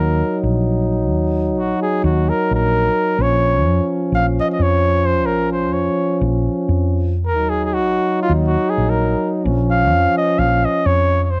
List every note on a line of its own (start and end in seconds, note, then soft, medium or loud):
0.00 0.21 D#2 loud
0.00 3.22 F#3 medium
0.00 3.20 D#4 medium
0.00 0.42 A#4 medium
0.43 1.11 A#1 loud
1.11 1.58 D#2 loud
1.58 1.72 A#1 medium
1.58 1.81 F#4 medium
1.82 2.03 G#4 medium
2.04 2.30 D#2 loud
2.04 2.31 F#4 medium
2.29 2.52 A#4 medium
2.51 2.88 A#1 medium
2.51 3.23 A#4 loud
3.18 3.65 A#1 loud
3.18 7.18 F3 medium
3.18 7.18 C#4 medium
3.18 3.93 C#5 medium
3.65 3.79 F2 loud
4.12 4.38 A#1 medium
4.12 4.26 F5 medium
4.40 4.47 D#5 medium
4.53 4.64 D#5 medium
4.59 5.27 F2 medium
4.59 5.08 C#5 loud
5.07 5.27 C5 medium
5.26 5.74 A#1 loud
5.26 5.51 A#4 medium
5.52 5.75 C5 medium
5.73 5.88 F2 loud
5.73 6.21 C#5 medium
6.21 6.47 A#1 loud
6.69 7.35 F2 medium
7.27 7.51 A#4 medium
7.35 7.83 D#2 loud
7.35 9.47 F#3 medium
7.35 9.46 D#4 medium
7.50 7.65 G#4 medium
7.65 7.75 G#4 medium
7.74 8.20 F#4 loud
7.83 7.97 A#1 medium
8.23 8.33 F4 loud
8.30 8.56 D#2 loud
8.47 8.71 F#4 medium
8.70 8.91 G#4 medium
8.78 9.14 A#1 medium
8.90 9.33 A#4 medium
9.44 9.92 A#1 loud
9.44 11.36 F3 medium
9.44 11.35 C#4 medium
9.71 10.14 F5 loud
9.92 10.06 F2 medium
10.17 10.40 D#5 loud
10.39 10.64 A#1 loud
10.39 10.66 F5 medium
10.65 10.88 D#5 medium
10.86 11.40 F2 medium
10.86 11.24 C#5 loud
11.24 11.32 C#5 medium
11.31 11.40 C5 medium